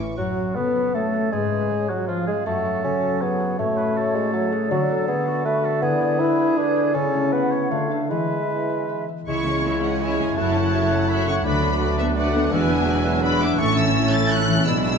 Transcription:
Already playing: A2 C#4 E4 A4
0.00 E3 C#6
0.17 F#2 F#3 F#4
0.37 C#4
0.55 C#3 B3 A4
0.76 F#4
0.95 A3 A4 C#5
1.14 F#4
1.32 G#2 G#3 G#4 B4
1.52 C#4
1.70 G#3 C#5
1.89 F#3 F4 F#4
2.08 F3 F4 B4 F5
2.27 G#3 F4 G#4
2.46 F#2 F#3 A3 F#4 A4 F#5
2.66 C#4
2.84 C#3 C#4 A4
3.03 F#4
3.21 B3 G#4 A4 C#5
3.40 F#4
3.58 A2 A3 F#4 C#5
3.78 C#4 B4
3.96 F#4 A4
4.15 G#3 F#4
4.33 F#3 A4
4.52 F#4 G#4
4.70 D3 F#3 F#4 A4 D5
4.89 B3 A4
5.08 A3 B3 G#4
5.26 F#4
5.44 A3 F#4 A4 B4 E5
5.64 F#4 A4
5.82 D3 B3 E4 G#4 D5
6.01 B3 G#4
6.19 G#3 E4 B4
6.38 E4
6.57 D4 G#4 B4
6.75 E4
6.94 C#3 C#4 E4 A4
7.14 A3
7.31 B3 C#4 B4 F#5
7.52 E4 C#5
7.70 D3 A3 F4 F5
7.90 D4 F4 A4
8.09 E3 G#3 E4 B4 E5
8.31 E4
8.50 B3
8.70 E4
8.89 B4
9.09 E4
9.28 C#2 C#3 G#3 E4 C#5 E5 C#6 G#6
9.46 G#3 C#4 G#4 C#5
9.64 G#3 E4 C#5 E5
9.83 C#4 G#4 C#5 F#5
10.00 G#3 C#4 E4 C#5 E5 G#5 G#6
10.19 G#3 C#4 G#4 C#5
10.37 F#1 F#2 F#3 A3 E4 F#4 C#5 E5 A5 F#6
10.55 C#3 C#4 E4 A4 F#5
10.73 E4 F#4 C#5 E5
10.91 C#4 E4 A4 F#5
11.09 C#4 E4 F#4 C#5 E5 B5
11.27 C#3 C#4 E4 A4 F#5 C#6
11.44 D2 D3 A3 D4 F#4 B4 D5 B5 F#6
11.63 A3 B3 D4 A4 B4
11.81 A3 F#4 B4 D5
11.98 B3 D4 A4 B4 E5
12.15 A3 D4 F#4 B4 D5 F#5 F#6
12.34 A3 B3 D4 A4 B4
12.51 E1 E2 E3 F#3 G#3 B3 D4 F#4 B4 D5 E5 G#5 F#6
12.70 B3 E4 G#4 E5
12.87 G#3 E4 F#4 B4 D5
13.05 B3 E4 F#4 G#4 E5
13.22 G#3 B3 D4 F#4 B4 D5 E5 B5 F#6
13.41 B3 E4 G#4 E5 D6
13.58 A1 A2 A3 C#4 E4 A4 C#5 E5 C#6 A6
13.76 E3 E6
13.95 E4
14.12 A4 A6
14.30 C#4 F#6
14.49 E3
14.65 B1 B2 G#3 B3 D4 G#4 D5 E5 B5 E6
14.83 B3 E6

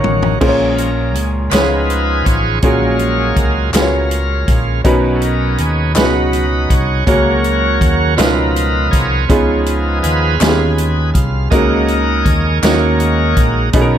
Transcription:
Already playing: D#3 A#3 C#4 D#4 F#4 A#4 C#5 D#5 F5
0.04 A1, mid tom
0.23 floor tom
0.41 A#1 A#2 F3 G#3 C#4 F4 G#4 A#4 C5, kick, crash
0.49 C#5
0.78 A#4, closed hi-hat
1.15 C#2 G#4, closed hi-hat
1.50 C#2 C#3 F3 B3 C#4 D#4 F4 G#4 B4, clap, closed hi-hat
1.54 B4 C#5, snare
1.90 closed hi-hat
2.25 A1 C#5, kick, closed hi-hat
2.62 A#1 A#2 F#3 G#3 A#3 C#4 F4 F#4 G#4 A#4 C#5 F5, kick, closed hi-hat
2.99 closed hi-hat
3.36 C#2 A#4, kick, closed hi-hat
3.73 C#2 C#4 F4 F#4 G#4 A#4 B4 F5, snare, clap, closed hi-hat
3.82 C#5
4.11 closed hi-hat
4.47 A#1 G#3 A#3 F4, kick, closed hi-hat
4.84 B1 B2 B3 C#4 D#4 F#4 A#4 B4, kick, closed hi-hat
5.16 A4
5.22 A#4, closed hi-hat
5.58 D#2 G#4, closed hi-hat
5.95 C#2 B2 F#3 B3 C#4 D#4 F4 F#4 G#4 B4, snare, clap, closed hi-hat
6.02 F#4
6.33 closed hi-hat
6.70 C2 C#5, kick, closed hi-hat
7.07 C#2 C#3 F#3 A#3 C#4 F#4 A#4 C#5, kick, closed hi-hat
7.44 closed hi-hat
7.81 D#2 C#5, kick, closed hi-hat
8.17 C#2 B2 F3 B3 C#4 D#4 F4 A#4 B4, snare, clap, closed hi-hat
8.56 closed hi-hat
8.91 C2 F4 G#4 C#5, kick, closed hi-hat
9.28 C#2 C#3 F3 B3 C#4 D#4 F4 G#4, kick, closed hi-hat
9.66 closed hi-hat
10.02 D#2 G#4 B4 F5, closed hi-hat
10.40 D#2 B3 C#4 D#4 F4 G4, snare, clap, closed hi-hat
10.48 G#4
10.78 closed hi-hat
11.14 C2 F5, kick, closed hi-hat
11.50 C#2 C#3 G#3 A#3 C#4 D#4 F#4 A#4 D#5 F#5, kick, closed hi-hat
11.88 closed hi-hat
12.25 D#2 C#5, kick, closed hi-hat
12.62 D#2 A#3 C#4 D#4 F#4 A#4 C#5, snare, clap, closed hi-hat
13.00 closed hi-hat
13.37 A#1, kick, closed hi-hat
13.73 B1 B2 B3 C#4 D#4 F#4 G#4 A#4, kick, closed hi-hat
13.81 A#4

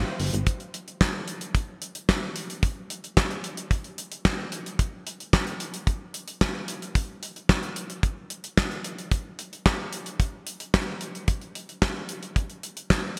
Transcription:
Already playing: E4 F4 G4 C5
0.20 G1, open hi-hat
0.33 G#1, closed hi-hat
0.47 kick, closed hi-hat
0.60 closed hi-hat
0.74 closed hi-hat
0.88 closed hi-hat
1.01 kick, snare, clap
1.28 closed hi-hat
1.41 closed hi-hat
1.55 kick, closed hi-hat
1.82 closed hi-hat
1.95 closed hi-hat
2.09 kick, snare, clap
2.36 closed hi-hat
2.50 closed hi-hat
2.63 kick, closed hi-hat
2.90 closed hi-hat
3.04 closed hi-hat
3.17 kick, snare, clap
3.31 closed hi-hat
3.44 closed hi-hat
3.57 closed hi-hat
3.71 kick, closed hi-hat
3.84 closed hi-hat
3.98 closed hi-hat
4.12 closed hi-hat
4.25 kick, snare, clap
4.52 closed hi-hat
4.66 closed hi-hat
4.79 kick, closed hi-hat
5.07 closed hi-hat
5.20 closed hi-hat
5.33 kick, snare, clap
5.47 closed hi-hat
5.60 closed hi-hat
5.74 closed hi-hat
5.87 kick, closed hi-hat
6.14 closed hi-hat
6.28 closed hi-hat
6.41 kick, snare, clap
6.68 closed hi-hat
6.82 closed hi-hat
6.95 kick, closed hi-hat
7.23 closed hi-hat
7.36 closed hi-hat
7.49 kick, snare, clap
7.63 closed hi-hat
7.76 closed hi-hat
7.90 closed hi-hat
8.03 kick, closed hi-hat
8.30 closed hi-hat
8.44 closed hi-hat
8.57 kick, snare, clap
8.71 closed hi-hat
8.84 closed hi-hat
8.98 closed hi-hat
9.11 kick, closed hi-hat
9.39 closed hi-hat
9.53 closed hi-hat
9.66 kick, snare, clap
9.93 closed hi-hat
10.06 closed hi-hat
10.20 kick, closed hi-hat
10.47 closed hi-hat
10.60 closed hi-hat
10.74 kick, snare, clap
11.01 closed hi-hat
11.15 closed hi-hat
11.28 kick, closed hi-hat
11.41 closed hi-hat
11.55 closed hi-hat
11.69 closed hi-hat
11.82 kick, snare, clap
12.09 closed hi-hat
12.23 closed hi-hat
12.36 kick, closed hi-hat
12.50 closed hi-hat
12.63 closed hi-hat
12.77 closed hi-hat
12.90 kick, snare, clap

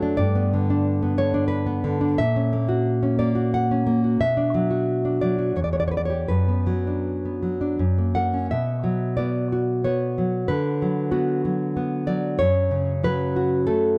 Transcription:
Already playing: F#2 F#3 A3
0.02 D4
0.17 G2 D5
0.35 B3
0.53 D3
0.70 D4
1.03 B3
1.18 D3 C#5
1.34 D4
1.48 B4
1.66 B3
1.84 D3
2.01 D4
2.18 A#2 E5
2.36 C#4
2.53 A#3
2.69 F#4
3.03 C#4
3.19 A#3 D5
3.35 F#4
3.54 F#5
3.71 C#4
3.87 A#3
4.04 F#4
4.20 B2 E5
4.37 D4
4.54 F#3
4.71 F#4
5.05 D4
5.21 F#3 D5
5.38 F#4
5.56 E2 C#5
5.64 D5
5.73 B3 C#5
5.80 D5
5.88 B4 C#5
5.97 D5
6.05 C#5
6.10 G4
6.28 F#2 B4
6.48 B3
6.67 F#3
6.87 D4
7.25 B3
7.43 F#3
7.61 D4
7.79 F#2
7.98 A#3
8.15 A#4 F#5
8.34 C#4
8.51 B2 E5
8.84 F#3
9.17 B3 D5
9.52 F#4
9.84 B3 C#5
10.18 F#3
10.48 D3 B4
10.82 F#3
11.11 B3 F#4
11.45 F#3
11.77 B3
12.07 F#3 D5
12.39 F#2 C#5
12.71 C#3
13.04 F#3 B4
13.36 F#4
13.67 A3 A4

